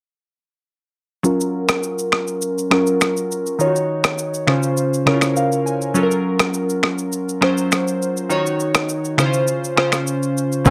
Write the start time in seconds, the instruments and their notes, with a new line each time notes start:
1.23 synth keys F#3 C#4 F4 A#4, shaker
1.41 shaker
1.69 finger snap, cross-stick, shaker
1.83 shaker
1.99 shaker
2.12 finger snap, cross-stick
2.27 shaker
2.42 shaker
2.58 shaker
2.70 synth keys F#3 C#4 F4 A#4, finger snap, cross-stick
2.87 shaker
3.01 finger snap, cross-stick, shaker
3.17 shaker
3.32 shaker
3.46 shaker
3.59 synth keys D#3 D#4 F4 C#5, shaker
3.67 synth keys F#4
3.76 shaker
4.04 finger snap, cross-stick, shaker
4.18 shaker
4.34 shaker
4.47 synth keys C#3 C#4 F4 C5, finger snap, cross-stick
4.63 shaker
4.77 shaker
4.94 shaker
5.06 synth keys C#3 C#4 E4 A#4 C#5, finger snap, cross-stick
5.14 synth keys F4
5.21 finger snap, cross-stick, shaker
5.36 synth keys F5, shaker
5.52 shaker
5.66 synth keys G#5, shaker
5.82 shaker
5.94 synth keys F#3 C#4 F4 A4, shaker
6.03 synth keys A#4
6.11 shaker
6.39 finger snap, cross-stick, shaker
6.54 shaker
6.70 shaker
6.83 finger snap, cross-stick
6.98 shaker
7.12 shaker
7.29 shaker
7.41 synth keys F#3 C#4 F4 C5, finger snap, cross-stick
7.58 shaker
7.72 finger snap, cross-stick, shaker
7.88 shaker
8.02 shaker
8.17 shaker
8.29 synth keys D#3 D#4 F#4 C#5, shaker
8.47 shaker
8.60 shaker
8.75 finger snap, cross-stick, shaker
8.89 shaker
9.05 shaker
9.18 synth keys C#3 C#4 E4 C5, finger snap, cross-stick, shaker
9.26 synth keys F4
9.33 shaker
9.48 shaker
9.64 shaker
9.76 synth keys C#3 C#4 F4 C5, finger snap, cross-stick
9.92 finger snap, cross-stick, shaker
10.07 shaker
10.23 shaker
10.38 shaker
10.52 shaker
10.65 analog synth bass F#1, synth keys F#3 C#4 F4, tenor saxophone C#4, kick, high agogo, shaker